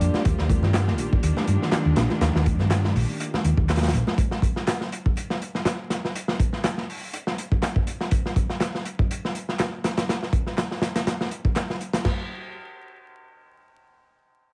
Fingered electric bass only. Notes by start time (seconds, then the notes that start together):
0.00 F2
0.26 D#2
0.39 D#2
0.63 G2
0.99 A#1
1.23 D#2
1.47 G2
1.86 D#2
1.97 A#1
2.21 D#2
2.35 D#2
2.60 G2
2.95 A#1
3.45 D#2
3.57 D#2
3.94 A#1